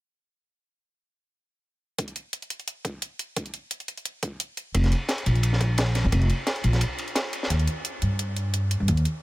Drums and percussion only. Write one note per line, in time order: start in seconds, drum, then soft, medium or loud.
1.98 kick loud
1.98 closed hi-hat medium
2.08 closed hi-hat soft
2.16 closed hi-hat medium
2.33 closed hi-hat medium
2.42 closed hi-hat soft
2.50 closed hi-hat medium
2.60 closed hi-hat soft
2.68 closed hi-hat medium
2.85 kick medium
2.85 closed hi-hat medium
3.02 closed hi-hat medium
3.19 closed hi-hat medium
3.36 kick loud
3.36 closed hi-hat medium
3.46 closed hi-hat soft
3.54 closed hi-hat medium
3.71 closed hi-hat medium
3.80 closed hi-hat soft
3.88 closed hi-hat medium
3.97 closed hi-hat soft
4.05 closed hi-hat medium
4.23 kick loud
4.23 closed hi-hat medium
4.40 closed hi-hat medium
4.57 closed hi-hat medium
4.75 kick loud
4.75 closed hi-hat medium
4.75 ride medium
4.84 snare soft
4.84 closed hi-hat soft
4.92 closed hi-hat medium
4.92 ride medium
5.09 snare loud
5.09 closed hi-hat medium
5.09 ride medium
5.18 closed hi-hat soft
5.26 closed hi-hat medium
5.26 ride medium
5.35 closed hi-hat soft
5.43 closed hi-hat medium
5.43 ride medium
5.53 snare soft
5.61 kick loud
5.61 closed hi-hat medium
5.61 ride medium
5.78 snare loud
5.78 closed hi-hat medium
5.78 ride medium
5.95 snare soft
5.95 closed hi-hat medium
5.95 ride medium
6.12 kick loud
6.12 closed hi-hat medium
6.12 ride medium
6.22 closed hi-hat soft
6.30 closed hi-hat medium
6.30 ride medium
6.47 snare loud
6.47 closed hi-hat medium
6.47 ride medium
6.56 closed hi-hat soft
6.64 closed hi-hat medium
6.64 ride medium
6.73 snare soft
6.73 closed hi-hat soft
6.81 closed hi-hat medium
6.81 ride medium
6.99 closed hi-hat medium
6.99 ride medium
7.08 closed hi-hat soft
7.15 snare loud
7.15 closed hi-hat medium
7.15 ride medium
7.33 closed hi-hat medium
7.33 ride medium
7.43 snare medium
7.50 closed hi-hat medium
7.59 closed hi-hat soft
7.67 closed hi-hat medium
7.85 closed hi-hat medium
8.02 closed hi-hat medium
8.19 closed hi-hat medium
8.36 closed hi-hat medium
8.54 closed hi-hat medium
8.71 closed hi-hat medium
8.88 closed hi-hat medium
8.97 closed hi-hat soft
9.05 closed hi-hat medium